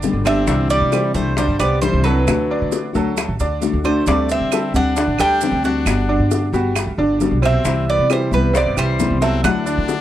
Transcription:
Already playing: G1 D3 D4 D5
0.03 B2 D3 G3 B3 G4, high bongo, low bongo, maracas
0.13 G1
0.25 D3 G3 B3 C4 D4 G4 D5 E5, high bongo, claves, maracas
0.47 C2 C3 D3 E3 G3 D4 E4 D5, high bongo, maracas
0.70 G3 D5, maracas
0.81 C3
0.92 G3 G4 C5, high bongo, claves, maracas
1.14 C2 E3 G3 A3 D4 E4 C5, high bongo, maracas
1.36 D3 G3 D4 C5 D5, muted nylon-string guitar stroke, high bongo, maracas
1.48 G2
1.59 C2 G3 B3 G4 C5 D5, high bongo, claves, maracas
1.81 C3 E3 G3 D4 E4 C5, high bongo, low bongo, maracas
1.93 C2
2.04 F#3 G3 D4 E4 F#4 A4 B4, high bongo, maracas
2.27 D2 D3 A3 D4 F#4, high bongo, claves, maracas
2.50 D3 D4 D5
2.62 D3
2.72 high bongo, maracas
2.93 D2 F#3 A3 D4 F#4 A4, high bongo, maracas
3.16 muted nylon-string guitar stroke, high bongo, claves, maracas
3.28 A1
3.40 D2 D3 D4 D5, high bongo, maracas
3.61 D3 A3 D4 F#4, high bongo, low bongo, maracas
3.73 D2
3.84 D3 A3 D4 F#4 C5 D5, high bongo, claves, maracas
4.06 D2 D3 G3 A3 C4 D4 D5, high bongo, maracas
4.29 C4 E5, maracas
4.41 D3
4.52 G3 G4 A4, high bongo, claves, maracas
4.73 D2 G3 C4 D4 F#5, high bongo, maracas
4.96 D3 D4 D5, muted nylon-string guitar stroke, high bongo, maracas
5.07 A1
5.19 D2 G3 D4 G4 A4 G5, high bongo, claves, maracas
5.41 D3 G3 C4, high bongo, low bongo, maracas
5.52 D2
5.64 G3 C4 D4 F#4 F#5, high bongo, maracas
5.85 G1 G3 B3 F#4, high bongo, claves, maracas
6.09 D3 D4 D5
6.19 G2
6.31 high bongo, maracas
6.52 G1 G3 B3 F#4 G4, high bongo, maracas
6.75 muted nylon-string guitar stroke, high bongo, claves, maracas
6.87 D2
6.98 G1 D3 D4 D5, high bongo
7.20 G3 B3 F#4, high bongo, low bongo, maracas
7.31 B1
7.42 C3 B3 C4 F#4 C5 E5, high bongo, claves, maracas
7.64 C2 C3 E3 G3 E4 C5, high bongo, maracas
7.88 B3 D5
7.99 C3
8.10 E3 G3 E4 G4 C5, high bongo, claves, maracas
8.31 C2 E3 G3 B3 E4 B4, high bongo, maracas
8.53 C3 B3 C4 C5 D5, muted nylon-string guitar stroke, high bongo, maracas
8.66 G2
8.76 C2 E3 G3 E4 G4 C5, high bongo, claves, maracas
8.99 C3 E3 G3 B3 E4, high bongo, low bongo, maracas
9.10 C2
9.21 F#3 G3 B3 C4 E4 F#4 A4 E5, high bongo, maracas
9.43 D2 D3 F#3 A3 D4 E4 F#5, high bongo, claves, maracas
9.66 D3 D4 D5, maracas
9.78 D3
9.89 high bongo, maracas

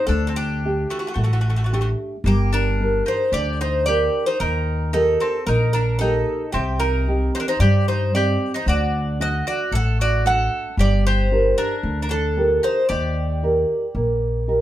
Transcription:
0.07 D2 D3 D4 A4
0.27 C4 A4
0.36 D4 G4
0.65 A3 D4 G4
0.90 A3 F#4
0.99 A3 F#4
1.07 A3 F#4
1.14 A1 A3 F#4
1.19 A3
1.24 A3 F#4
1.33 A3 F#4
1.41 A3 F#4
1.49 A3 F#4
1.56 A3 F#4
1.64 A3 F#4
1.73 A3 D4 F#4 G4
1.81 A3 F#4
2.24 G1 G3 A#3 G4
2.53 D4 A#4
2.80 D4 G4 A#4
3.06 D#4 C5
3.32 D2 D3 G4 D5
3.61 D#4 C5
3.86 D4 G4 A#4 D5
4.26 D#4 C5
4.40 D#2 D#3 D#4 A#4
4.93 D#4 G4 A4 A#4
5.20 C4 A4
5.46 A#1 A#3 D#4 A#4
5.73 D4 A#4
5.99 A#3 D#4 G4 A4
6.52 C2 C3 C4 G4
6.80 D#4 A#4
7.08 C4 D#4 G4
7.35 D#4 C5
7.40 D4 A#4
7.48 D#4 C5
7.59 G2 G3 G4 D5
7.88 D#4 C5
8.14 C4 D#4 G4 D5
8.54 D#4 C5
8.66 D2 D3 F#4 D5
9.19 A3 D4 F#4 D#5
9.47 F#4 D5
9.72 A1 A3 A4 F#5
10.01 F#4 D5
10.25 A3 D4 F#4 A4 F#5
10.77 G1 G3 G4 D5
11.06 G4 C5
11.32 D4 G4 A#4
11.58 D4 A#4
11.83 D2 D3
12.02 D4 A#4
12.09 D4 A4
12.37 D4 G4 A#4
12.63 D#4 C5
12.89 D#2 D#3 G4 D5
13.43 D#4 G4 A#4
13.95 A#1 A#3
14.48 D#4 G4 A#4

